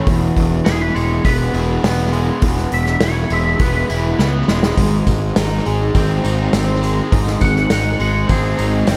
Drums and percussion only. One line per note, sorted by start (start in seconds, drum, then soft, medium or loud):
0.07 kick loud
0.07 open hi-hat medium
0.37 kick medium
0.37 open hi-hat medium
0.66 snare loud
0.66 open hi-hat medium
0.96 open hi-hat medium
1.25 kick loud
1.25 open hi-hat medium
1.54 open hi-hat medium
1.84 snare loud
1.84 open hi-hat medium
2.13 open hi-hat medium
2.42 kick loud
2.42 open hi-hat medium
2.58 snare soft
2.72 open hi-hat medium
2.86 snare soft
3.01 snare loud
3.01 open hi-hat medium
3.30 open hi-hat medium
3.59 kick loud
3.59 open hi-hat medium
3.90 open hi-hat medium
4.19 snare medium
4.48 snare medium
4.63 snare medium
4.77 kick loud
4.77 open hi-hat medium
5.07 kick medium
5.07 open hi-hat medium
5.07 tambourine medium
5.36 snare loud
5.36 open hi-hat medium
5.36 tambourine medium
5.66 open hi-hat soft
5.95 kick loud
5.95 open hi-hat medium
5.95 tambourine medium
6.24 open hi-hat medium
6.24 tambourine medium
6.53 snare loud
6.53 open hi-hat medium
6.53 tambourine loud
6.83 open hi-hat medium
6.83 tambourine medium
7.12 kick loud
7.12 open hi-hat medium
7.27 snare soft
7.41 kick medium
7.41 open hi-hat medium
7.41 tambourine medium
7.56 snare soft
7.70 snare loud
7.70 open hi-hat medium
7.70 tambourine loud
8.00 open hi-hat medium
8.29 kick loud
8.29 open hi-hat medium
8.29 tambourine medium
8.59 open hi-hat medium
8.59 tambourine medium
8.87 snare loud
8.87 open hi-hat medium
8.87 tambourine medium